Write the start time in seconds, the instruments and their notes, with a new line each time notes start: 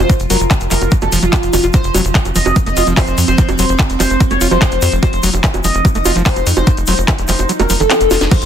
Already playing: ambient pad F3 F4
0.00 analog synth lead C5
0.10 acid bass F3, kick, closed hi-hat, shaker
0.20 analog synth bass F1, closed hi-hat, shaker
0.30 analog synth bass F1, acid bass F#3, analog synth lead A#4, open hi-hat, high bongo, shaker
0.40 analog synth bass F1, closed hi-hat, shaker
0.51 acid bass D#3, kick, clap, closed hi-hat, high bongo, shaker
0.60 analog synth bass F1, closed hi-hat, shaker
0.71 analog synth bass F1, acid bass F3, analog synth lead A#4, clap, open hi-hat, shaker
0.81 analog synth bass F1, closed hi-hat, high bongo, shaker
0.91 acid bass F#3, kick, closed hi-hat, shaker
1.01 analog synth bass F1, acid bass A3, analog synth lead A4, closed hi-hat, high bongo, shaker
1.12 analog synth bass F1, acid bass F3, open hi-hat, shaker
1.22 analog synth bass F1, acid bass F#3, analog synth lead F4, closed hi-hat, shaker
1.33 acid bass F4, kick, clap, closed hi-hat, high bongo, shaker
1.43 analog synth bass F1, closed hi-hat, shaker
1.53 analog synth bass F1, acid bass D#3, open hi-hat, high bongo, shaker
1.63 analog synth bass F1, acid bass F4, closed hi-hat, shaker
1.73 acid bass F3, ambient pad C4, analog synth lead C5, kick, closed hi-hat, high bongo, shaker
1.84 analog synth bass F1, closed hi-hat, shaker
1.94 analog synth bass F1, acid bass F#3, open hi-hat, high bongo, shaker
2.05 analog synth bass F1, closed hi-hat, shaker
2.15 acid bass D#3, kick, clap, closed hi-hat, shaker
2.25 analog synth bass F1, closed hi-hat, high bongo, shaker
2.35 analog synth bass F1, acid bass F3, analog synth lead D#5, open hi-hat, shaker
2.46 analog synth bass F1, closed hi-hat, high bongo, shaker
2.56 acid bass F#3, kick, closed hi-hat, shaker
2.66 analog synth bass F1, acid bass A3, analog synth lead D#5, closed hi-hat, shaker
2.77 analog synth bass F1, acid bass F4, open hi-hat, high bongo, shaker
2.87 analog synth bass F1, acid bass F3, closed hi-hat, shaker
2.97 acid bass F4, analog synth lead C5, kick, clap, open hi-hat, high bongo, shaker
3.07 analog synth bass F1, closed hi-hat, shaker
3.18 analog synth bass F2, open hi-hat, shaker
3.28 analog synth bass F1, analog synth lead C5, closed hi-hat, high bongo, shaker
3.38 acid bass F3, kick, closed hi-hat, shaker
3.49 analog synth bass F1, closed hi-hat, high bongo, shaker
3.59 analog synth bass F1, acid bass F#3, analog synth lead C5, open hi-hat, shaker
3.69 analog synth bass F1, closed hi-hat, shaker
3.79 acid bass D#3, kick, clap, closed hi-hat, high bongo, shaker
3.90 analog synth bass F1, closed hi-hat, shaker
4.00 analog synth bass F1, acid bass F3, analog synth lead C5, clap, open hi-hat, high bongo, shaker
4.10 analog synth bass F1, closed hi-hat, shaker
4.20 acid bass F#3, kick, closed hi-hat, shaker
4.30 analog synth bass F1, acid bass A3, analog synth lead C#5, closed hi-hat, high bongo, shaker
4.41 analog synth bass F1, acid bass F4, open hi-hat, shaker
4.51 analog synth bass F1, acid bass F3, analog synth lead C5, closed hi-hat, high bongo, shaker
4.62 acid bass F4, kick, clap, closed hi-hat, shaker
4.71 analog synth bass F1, closed hi-hat, shaker
4.82 analog synth bass F2, open hi-hat, high bongo, shaker
4.92 analog synth bass F1, closed hi-hat, shaker
5.03 acid bass F3, ambient pad D#4, analog synth lead C5, kick, closed hi-hat, high bongo, shaker
5.13 analog synth bass F1, closed hi-hat, shaker
5.23 analog synth bass F1, acid bass F#3, open hi-hat, shaker
5.33 analog synth bass F1, closed hi-hat, high bongo, shaker
5.44 acid bass D#3, kick, clap, closed hi-hat, shaker
5.54 analog synth bass F1, closed hi-hat, high bongo, shaker
5.64 analog synth bass F1, acid bass F3, analog synth lead D#5, open hi-hat, shaker
5.75 analog synth bass F1, closed hi-hat, shaker
5.85 acid bass F#3, kick, closed hi-hat, high bongo, shaker
5.95 analog synth bass F1, acid bass A3, analog synth lead D#5, closed hi-hat, shaker
6.05 analog synth bass F1, acid bass F4, open hi-hat, high bongo, shaker
6.16 analog synth bass F1, acid bass F3, closed hi-hat, shaker
6.25 acid bass F4, analog synth lead C5, kick, clap, open hi-hat, shaker
6.36 analog synth bass F1, closed hi-hat, high bongo, shaker
6.47 analog synth bass F2, open hi-hat, shaker
6.56 analog synth bass F1, analog synth lead C5, closed hi-hat, high bongo, shaker
6.67 acid bass F3, kick, closed hi-hat, shaker
6.77 analog synth bass F1, closed hi-hat, shaker
6.87 analog synth bass F1, acid bass F#3, analog synth lead C5, open hi-hat, high bongo, shaker
6.98 analog synth bass F1, closed hi-hat, shaker
7.08 acid bass D#3, kick, clap, closed hi-hat, high bongo, shaker
7.18 analog synth bass F1, closed hi-hat, shaker
7.28 analog synth bass F1, acid bass F3, analog synth lead C5, clap, open hi-hat, shaker
7.39 analog synth bass F1, closed hi-hat, high bongo, shaker
7.49 acid bass F#3, closed hi-hat, shaker
7.60 analog synth bass F1, acid bass A3, analog synth lead A#4, closed hi-hat, high bongo, shaker
7.70 analog synth bass F1, acid bass F3, open hi-hat, shaker
7.80 analog synth bass F1, acid bass D#3, analog synth lead A4, closed hi-hat, shaker
7.90 acid bass C4, clap, closed hi-hat, high bongo, shaker
8.00 analog synth bass F1, closed hi-hat, shaker
8.11 analog synth bass F1, acid bass F4, snare, open hi-hat, high bongo, shaker
8.21 analog synth bass F1, snare, closed hi-hat, shaker
8.31 acid bass F3, ambient pad F3 C4, analog synth lead C5, kick, closed hi-hat, crash, high bongo, shaker
8.42 analog synth bass F1, closed hi-hat, shaker